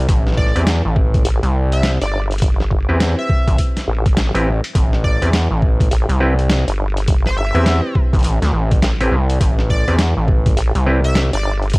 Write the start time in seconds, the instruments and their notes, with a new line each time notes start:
0.09 analog synth bass A1, kick, closed hi-hat
0.27 snare
0.32 snare
0.37 analog synth lead D5, kick, snare
0.47 snare
0.56 analog synth bass E2, clav C4 E4 G4 B4, closed hi-hat
0.67 snare, closed hi-hat
0.85 analog synth bass A1
0.96 kick
1.14 kick, closed hi-hat
1.25 wobble bass A1, closed hi-hat
1.43 analog synth bass C2, closed hi-hat
1.72 analog synth lead E5, closed hi-hat
1.83 snare, closed hi-hat
2.02 wobble bass G1, analog synth lead D5, closed hi-hat
2.31 closed hi-hat
2.32 closed hi-hat
2.38 kick, closed hi-hat
2.42 closed hi-hat
2.60 snare
2.71 kick
2.89 analog synth bass E2, clav C4 E4 G4 B4
3.00 snare, closed hi-hat
3.19 analog synth lead E5
3.29 kick
3.47 analog synth bass A1, kick, closed hi-hat
3.58 kick, closed hi-hat
3.77 snare, closed hi-hat
3.88 wobble bass A1
4.06 kick, closed hi-hat
4.17 snare, closed hi-hat
4.34 analog synth bass A1, clav C4 E4 G4 B4, closed hi-hat
4.64 closed hi-hat
4.75 analog synth bass A1, kick, closed hi-hat
4.93 snare
5.04 analog synth lead D5, kick
5.22 analog synth bass E2, clav C4 E4 G4 B4, closed hi-hat
5.33 snare, closed hi-hat
5.51 analog synth bass A1
5.62 kick
5.80 kick, closed hi-hat
5.91 wobble bass A1, closed hi-hat
6.09 analog synth bass C2, closed hi-hat
6.20 clav C4 E4 G4 B4
6.39 closed hi-hat
6.50 snare, closed hi-hat
6.68 wobble bass G1, closed hi-hat
6.97 closed hi-hat
7.08 kick, closed hi-hat
7.26 analog synth lead C5, snare
7.38 analog synth lead E5
7.55 analog synth bass E2, clav C4 E4 G4 B4, closed hi-hat
7.66 snare, closed hi-hat
7.95 kick
8.13 analog synth bass A1, kick, closed hi-hat
8.15 closed hi-hat
8.19 closed hi-hat
8.21 closed hi-hat
8.23 analog synth bass A1, closed hi-hat
8.24 closed hi-hat
8.42 analog synth bass D2, snare, closed hi-hat
8.53 analog synth bass A1
8.71 kick, closed hi-hat
8.82 wobble bass A1, snare, closed hi-hat
9.01 clav C4 E4 G4 B4, closed hi-hat
9.11 analog synth bass C2
9.30 closed hi-hat
9.41 analog synth bass A1, kick, closed hi-hat
9.59 snare
9.70 analog synth lead D5, kick
9.88 analog synth bass E2, clav C4 E4 G4 B4, closed hi-hat
9.99 snare, closed hi-hat
10.17 analog synth bass A1
10.28 kick
10.46 kick, closed hi-hat
10.57 wobble bass A1, closed hi-hat
10.75 analog synth bass C2, closed hi-hat
10.86 clav C4 E4 G4 B4
11.04 analog synth lead E5, closed hi-hat
11.15 snare, closed hi-hat
11.33 wobble bass G1, analog synth lead D5, closed hi-hat
11.63 closed hi-hat
11.70 closed hi-hat
11.73 kick, closed hi-hat